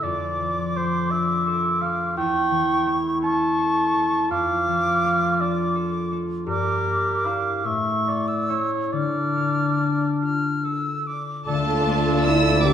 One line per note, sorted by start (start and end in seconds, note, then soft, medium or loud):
0.00 2.20 F2 soft
0.00 0.75 A3 soft
0.00 2.14 F4 medium
0.00 1.45 A4 soft
0.00 0.78 D5 medium
0.07 2.15 D6 soft
0.40 2.20 F3 soft
0.76 1.80 A3 soft
0.76 1.12 C5 medium
1.11 2.20 D4 soft
1.11 1.84 E5 medium
1.47 3.57 A4 soft
1.81 2.85 A3 soft
1.81 2.17 F5 medium
2.16 4.34 E2 soft
2.16 4.31 E4 medium
2.16 2.95 G5 medium
2.16 3.18 C#6 soft
2.51 4.33 E3 soft
2.86 3.93 A3 soft
3.22 4.33 C#4 soft
3.22 4.28 A5 medium
3.22 4.30 C#6 medium
3.58 5.74 A4 soft
3.94 5.02 A3 soft
4.30 6.51 F2 medium
4.30 6.46 F4 medium
4.30 5.42 F5 medium
4.30 5.39 D6 medium
4.67 6.51 F3 soft
5.04 6.11 A3 soft
5.40 7.23 D4 soft
5.40 5.77 D5 medium
5.40 6.17 D6 medium
5.75 6.51 A4 soft
6.12 6.51 A3 soft
6.46 7.68 G2 soft
6.46 7.62 G4 medium
6.46 7.27 A#4 medium
6.46 7.67 D6 soft
6.85 7.68 A#3 soft
7.25 7.69 D4 soft
7.25 8.48 E4 soft
7.25 7.67 F5 medium
7.64 8.96 A2 soft
7.64 8.59 A3 soft
7.64 8.10 E5 medium
7.64 8.29 C#6 soft
8.07 9.35 A3 soft
8.07 8.51 D5 medium
8.28 8.70 E6 soft
8.49 8.96 C#4 soft
8.49 8.96 E4 soft
8.49 8.92 C#5 soft
8.92 11.47 D3 soft
8.92 11.09 D4 soft
8.92 10.18 D5 medium
8.92 10.09 F6 soft
9.36 12.67 A3 soft
9.79 11.08 D4 soft
10.21 12.24 F4 soft
10.21 10.66 F6 soft
10.64 12.67 A4 soft
10.64 11.08 E6 soft
11.07 11.86 D4 soft
11.07 11.48 D6 soft
11.47 12.73 D2 medium
11.47 12.62 D3 soft
11.47 12.21 A3 medium
11.47 12.60 A3 soft
11.47 12.60 D4 soft
11.47 12.59 F4 soft
11.47 12.60 F4 soft
11.47 12.27 A4 medium
11.47 12.60 A4 soft
11.47 12.73 D5 medium
11.47 12.21 A5 medium
11.87 12.24 D4 soft
12.23 12.73 D4 soft
12.23 12.63 E4 medium
12.23 12.67 F4 soft
12.23 12.64 E5 medium
12.23 12.63 E6 medium
12.63 12.73 D3 soft
12.63 12.73 G3 soft
12.63 12.73 A#3 soft
12.63 12.73 D4 soft
12.63 12.73 E4 soft
12.63 12.73 G4 soft
12.63 12.73 G4 medium
12.63 12.73 A#4 soft
12.63 12.73 D5 soft
12.63 12.73 D6 medium